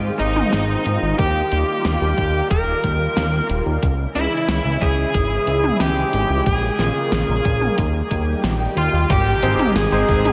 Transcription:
Already playing: analog synth bass G#2, analog synth pad D#3 G#3 C4 F4
0.19 analog synth bass G#1, lead electric guitar D#4, closed hi-hat
0.36 mid tom
0.53 analog synth bass G#1, snare, closed hi-hat
0.86 analog synth bass G#2, closed hi-hat
1.02 analog synth bass G#1
1.18 analog synth bass D#2, analog synth pad G3 A#3, lead electric guitar G4, kick, closed hi-hat
1.52 analog synth bass D#2, closed hi-hat
1.85 analog synth bass D#2, snare, closed hi-hat
2.01 analog synth bass D#2
2.18 analog synth bass D#2, kick, closed hi-hat
2.50 analog synth bass D#1, lead electric guitar A#4, kick, closed hi-hat
2.84 analog synth bass D#2, kick, closed hi-hat
3.17 analog synth bass D#2, snare, closed hi-hat
3.49 analog synth bass D#1, closed hi-hat
3.66 analog synth bass D#2
3.83 analog synth bass C#2, analog synth pad C#3 E3 G#3 E4, kick, closed hi-hat
4.15 analog synth bass C#2, lead electric guitar E4, closed hi-hat
4.48 analog synth bass C#2, snare, closed hi-hat
4.65 analog synth bass C#2
4.81 analog synth bass C#2, lead electric guitar G#4, kick, closed hi-hat
5.14 analog synth bass G#1, kick, closed hi-hat
5.47 analog synth bass C#2, closed hi-hat
5.64 mid tom
5.80 analog synth bass C#2, lead electric guitar G4, snare, closed hi-hat
6.13 analog synth bass G#1, closed hi-hat
6.30 analog synth bass C#2
6.46 analog synth bass A#1, analog synth pad C#3 A#3 F4, lead electric guitar G#4, kick, closed hi-hat
6.79 analog synth bass A#1, snare, closed hi-hat
7.12 analog synth bass A#1, snare, closed hi-hat
7.29 analog synth bass A#1
7.45 analog synth bass A#1, kick, closed hi-hat
7.61 mid tom
7.78 analog synth bass D#2, analog synth pad D#3 G3 G4, kick, closed hi-hat
8.11 analog synth bass D#2, kick, closed hi-hat
8.44 analog synth bass A#1, snare, closed hi-hat
8.76 analog synth bass D#2, lead electric guitar F4, closed hi-hat
8.93 analog synth bass D#2
9.10 analog synth bass G#1, analog synth pad C3 D#3 G#3 D#5, lead electric guitar G4, kick, closed hi-hat, crash, impact
9.43 analog synth bass G#1, electric grand piano G#3 C4 D#4 C5, closed hi-hat
9.59 closed hi-hat, mid tom
9.76 analog synth bass G#1, lead electric guitar G#4, snare, closed hi-hat
9.92 analog synth bass G#1, electric grand piano G#3 C4 D#4 C5
10.09 analog synth bass G#1, kick, open hi-hat
10.25 closed hi-hat, mid tom

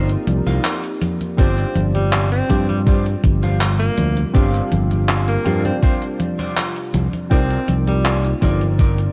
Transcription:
Already playing: fingered electric bass G1, ambient pad A#3 D#4 G4, synth keys C4 D#4 F4 A#4 D5
0.10 closed hi-hat
0.27 fingered electric bass C2, muted clean electric guitar stroke, closed hi-hat, high conga
0.46 fingered electric bass C2, clean electric guitar D#4 F4 A#4 F5, closed hi-hat, high conga
0.64 clap, closed hi-hat, high conga
0.83 muted clean electric guitar stroke, closed hi-hat
1.02 closed hi-hat, high conga
1.21 closed hi-hat, high conga
1.37 fingered electric bass G1, ambient pad C3 G3 F4, synth keys C4 D4 F4 G4 D5, alto saxophone C4, clean electric guitar F4 G4 C5 D5, kick, closed hi-hat
1.58 closed hi-hat
1.75 fingered electric bass G1, closed hi-hat, high conga
1.94 alto saxophone G3, muted clean electric guitar stroke, closed hi-hat, high conga
2.12 clap, closed hi-hat, high conga
2.32 alto saxophone C4, closed hi-hat
2.48 fingered electric bass G2, synth keys C4 D4 F4 G4 D5, clean electric guitar F4 G4 C5 D5, kick, closed hi-hat, high conga
2.68 alto saxophone G3, closed hi-hat, high conga
2.86 alto saxophone G3, clean electric guitar F4 G4 C5 D5, kick, closed hi-hat, high conga
3.06 closed hi-hat
3.23 fingered electric bass G1, muted clean electric guitar stroke, kick, closed hi-hat, high conga
3.42 clean electric guitar F4 G4 C5 F5, closed hi-hat, high conga
3.61 clap, closed hi-hat, high conga
3.80 alto saxophone A#3, muted clean electric guitar stroke, closed hi-hat
3.98 fingered electric bass D2, closed hi-hat, high conga
4.17 closed hi-hat, high conga
4.33 fingered electric bass G1, synth keys C4 D4 F4 G4 F5, clean electric guitar F4 G4 C5 D5, kick, closed hi-hat, high conga
4.54 closed hi-hat
4.72 fingered electric bass G1, closed hi-hat, high conga
4.91 muted clean electric guitar stroke, closed hi-hat, high conga
5.09 clap, closed hi-hat, high conga
5.28 alto saxophone A#3, closed hi-hat
5.44 fingered electric bass G2, synth keys C4 D4 F4 G4 D5, clean electric guitar F4 G4 C5 F5, closed hi-hat, high conga
5.65 alto saxophone C4, closed hi-hat, high conga
5.82 alto saxophone C4, clean electric guitar F4 G4 C5 F5, kick, closed hi-hat, high conga
6.02 closed hi-hat
6.20 muted clean electric guitar stroke, closed hi-hat, high conga
6.39 clean electric guitar F4 G4 C5 D5, closed hi-hat, high conga
6.57 clap, closed hi-hat, high conga
6.76 muted clean electric guitar stroke, closed hi-hat
6.94 fingered electric bass C2, closed hi-hat, high conga
7.13 closed hi-hat, high conga
7.30 fingered electric bass C2, ambient pad A#3 D#4, synth keys C4 D#4 F4 A#4 D5, alto saxophone C4, clean electric guitar D#4 F4 A#4 D5, kick, closed hi-hat, high conga
7.50 closed hi-hat
7.68 fingered electric bass C2, closed hi-hat, high conga
7.87 alto saxophone G3, muted clean electric guitar stroke, closed hi-hat, high conga
8.05 clap, closed hi-hat, high conga
8.24 closed hi-hat
8.41 fingered electric bass G1, synth keys C4 D#4 F4 A#4 D5, clean electric guitar D#4 F4 A#4 D5, kick, closed hi-hat, high conga
8.61 closed hi-hat, high conga
8.79 clean electric guitar D#4 F4 A#4 D5, kick, closed hi-hat, high conga
8.98 closed hi-hat

